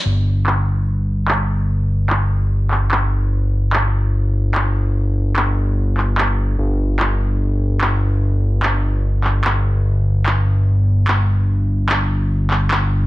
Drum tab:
CP |--x---x-|--x--xx-|--x---x-|--x--xx-|

CP |--x---x-|--x--xx-|--x---x-|--x--xx-|